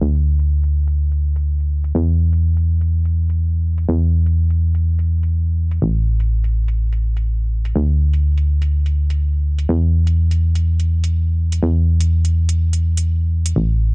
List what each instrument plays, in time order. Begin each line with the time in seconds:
0.01 fm bass D2
0.15 closed hi-hat
0.39 closed hi-hat
0.63 closed hi-hat
0.88 closed hi-hat
1.12 closed hi-hat
1.36 closed hi-hat
1.60 closed hi-hat
1.84 closed hi-hat
1.95 fm bass E2
2.33 closed hi-hat
2.57 closed hi-hat
2.81 closed hi-hat
3.05 closed hi-hat
3.29 closed hi-hat
3.78 closed hi-hat
3.89 fm bass E2
4.26 closed hi-hat
4.50 closed hi-hat
4.75 closed hi-hat
4.99 closed hi-hat
5.23 closed hi-hat
5.71 closed hi-hat
5.82 fm bass A1
6.20 closed hi-hat
6.44 closed hi-hat
6.68 closed hi-hat
6.92 closed hi-hat
7.17 closed hi-hat
7.65 closed hi-hat
7.76 fm bass D2
8.13 closed hi-hat
8.38 closed hi-hat
8.62 closed hi-hat
8.86 closed hi-hat
9.10 closed hi-hat
9.59 closed hi-hat
9.69 fm bass E2
10.07 closed hi-hat
10.31 closed hi-hat
10.55 closed hi-hat
10.80 closed hi-hat
11.04 closed hi-hat
11.52 closed hi-hat
11.63 fm bass E2
12.01 closed hi-hat
12.25 closed hi-hat
12.49 closed hi-hat
12.73 closed hi-hat
12.97 closed hi-hat
13.46 closed hi-hat
13.56 fm bass A1